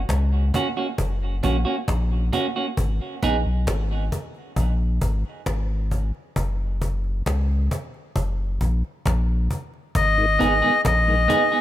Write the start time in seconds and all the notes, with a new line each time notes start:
0.09 C#2, cajon bass, cajon slap
0.54 A#3 C#4 F#4, cajon bass, cajon slap
0.77 A#3 C#4 F#4, cajon slap
0.98 F#1, cajon bass
1.43 A#1 A#3 C#4 F#4, cajon bass
1.65 A#3 C#4 F#4, cajon slap
1.88 A#1, cajon bass, cajon slap
2.33 A#3 C#4 F#4, cajon bass
2.56 A#3 C#4 F#4, cajon slap
2.77 G#1, cajon bass
3.23 A#1 B3 D#4 G#4, cajon bass
3.45 B1, cajon slap
3.67 G#1, cajon bass, cajon slap
4.12 cajon bass, cajon slap
4.35 cajon slap
4.56 A#1, cajon bass
5.01 G#1, cajon bass
5.25 cajon slap
5.46 G#1, cajon bass, cajon slap
5.91 cajon bass
6.14 cajon slap
6.36 F#1, cajon bass
6.82 cajon bass
7.04 cajon slap
7.26 C#2, cajon bass, cajon slap
7.71 cajon bass, cajon slap
7.94 cajon slap
8.16 F#1, cajon bass
8.61 A#1, cajon bass
8.85 cajon slap
9.06 A#1, cajon bass, cajon slap
9.50 cajon bass
9.74 cajon slap
9.95 G#1 D#5, cajon bass
10.18 G#2 D#3
10.39 G#1 G#3 B3 D#4 G#4, cajon bass
10.62 G#2 D#3 B3 D#4 G#4, cajon slap
10.85 A#1 D#5, cajon bass, cajon slap
11.08 G#2 D#3
11.28 G#3 B3 D#4 G#4, cajon bass, cajon slap
11.52 B3 D#4 G#4, cajon slap